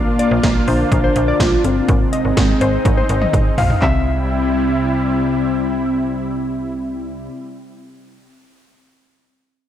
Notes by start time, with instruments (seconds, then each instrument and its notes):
Already playing: soft synth lead A#3, analog synth pad A#3 D4 F4
0.19 synth pluck D5, closed hi-hat
0.31 fm bass A#1
0.43 fm bass A#1, kick, snare, closed hi-hat
0.68 fm bass A#1, soft synth lead D4, synth pluck C5, open hi-hat
0.92 fm bass A#1, kick, closed hi-hat
1.04 synth pluck C5
1.16 fm bass A#1, closed hi-hat
1.28 synth pluck D5
1.40 fm bass A#1, soft synth lead F4, kick, snare, closed hi-hat
1.64 fm bass G1, soft synth lead C4, closed hi-hat
1.89 fm bass G#1, analog synth pad G#3 C4 D#4, kick, closed hi-hat
2.13 synth pluck D#5, closed hi-hat
2.25 fm bass G#1
2.37 fm bass G#1, kick, snare, closed hi-hat
2.61 fm bass G#1, synth pluck C5, closed hi-hat
2.85 fm bass G#1, kick, closed hi-hat, high tom
2.97 synth pluck C5, high tom
3.09 fm bass G#1, closed hi-hat
3.22 synth pluck D#5, mid tom
3.33 fm bass G#1, kick, closed hi-hat, mid tom
3.58 fm bass A#1, synth pluck F5, floor tom, open hi-hat
3.70 floor tom
3.82 fm bass C2, analog synth pad C3 G3 E4, soft synth lead C4, synth pluck E5, kick, clap